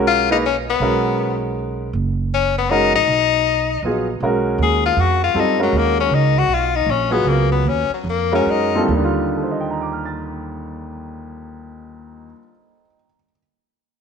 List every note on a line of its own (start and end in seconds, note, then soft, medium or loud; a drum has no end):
0.00 0.76 B1 medium
0.00 0.27 G#3 medium
0.00 0.27 C#4 medium
0.00 0.28 F#4 medium
0.00 0.28 A#4 medium
0.07 0.29 F4 medium
0.30 0.42 A#3 medium
0.30 0.42 D#4 medium
0.30 0.37 D#4 medium
0.30 0.42 G#4 medium
0.30 0.42 B4 medium
0.46 0.56 C#4 medium
0.70 1.40 B3 medium
0.80 1.90 B1 medium
0.80 1.86 G#3 medium
0.80 1.86 C#4 soft
0.80 1.86 F#4 soft
0.80 1.87 A#4 medium
1.93 2.90 F#1 medium
2.34 2.56 C#4 medium
2.58 2.72 B3 medium
2.70 2.92 G#3 medium
2.70 2.92 C#4 medium
2.70 2.94 D#4 medium
2.70 2.92 F#4 medium
2.70 2.92 A#4 medium
2.93 3.06 A#1 medium
2.93 4.04 D#4 medium
3.07 3.79 B1 medium
3.83 4.18 A#1 medium
3.83 4.06 F#3 soft
3.83 4.06 B3 soft
3.83 4.06 F4 soft
3.83 4.06 G#4 soft
4.20 4.57 B1 medium
4.20 5.27 G#3 medium
4.20 5.27 C#4 soft
4.20 5.27 F#4 medium
4.20 5.28 A#4 medium
4.58 4.95 D#2 medium
4.63 4.84 G#4 medium
4.86 5.02 F4 medium
4.96 5.33 F2 medium
4.96 5.23 F#4 medium
5.24 5.41 F4 medium
5.34 5.71 F#2 medium
5.34 5.56 G3 medium
5.34 5.57 C4 soft
5.34 5.57 F4 soft
5.34 5.57 A4 medium
5.39 5.61 D#4 medium
5.59 5.79 F#3 medium
5.59 6.40 G#3 medium
5.59 6.40 C#4 medium
5.59 6.40 F#4 soft
5.59 6.40 A#4 medium
5.72 6.09 D#2 medium
5.78 5.99 A#3 medium
6.00 6.16 C#4 medium
6.10 6.47 C#2 medium
6.15 6.40 D#4 medium
6.38 6.55 F#4 medium
6.48 6.85 B1 medium
6.54 6.77 F4 medium
6.76 6.92 D#4 medium
6.86 7.23 A#1 medium
6.90 7.13 C#4 medium
7.11 7.61 F#3 medium
7.11 7.61 B3 medium
7.11 7.30 B3 medium
7.11 7.61 F4 soft
7.11 7.61 G#4 medium
7.24 7.62 C#2 medium
7.28 7.51 A#3 medium
7.52 7.70 B3 medium
7.63 7.87 D#2 medium
7.68 7.92 C#4 medium
7.89 muted upright bass stroke soft
7.94 8.10 F#3 soft
8.04 8.44 F2 medium
8.09 8.34 A#3 medium
8.32 8.71 G#3 medium
8.32 8.72 C#4 medium
8.32 8.52 C#4 medium
8.32 8.72 F#4 medium
8.32 8.72 A#4 medium
8.45 8.88 F#2 medium
8.50 8.84 D#4 medium
8.75 8.77 D#2 medium
8.75 12.26 D#2 medium
8.75 8.89 G3 soft
8.75 8.89 C4 medium
8.75 8.89 F4 medium
8.75 8.89 A4 medium
8.85 12.32 D#2 medium
8.85 12.32 D#3 soft
8.91 12.39 G3 medium
8.97 12.44 D3 soft
9.04 12.51 F4 medium
9.36 12.79 A4 soft
9.43 12.86 C5 soft
9.51 12.95 D#5 soft
9.60 13.04 G5 soft
9.70 13.14 A#5 soft
9.81 13.25 D6 soft
9.93 13.32 F6 soft
10.05 13.38 A6 soft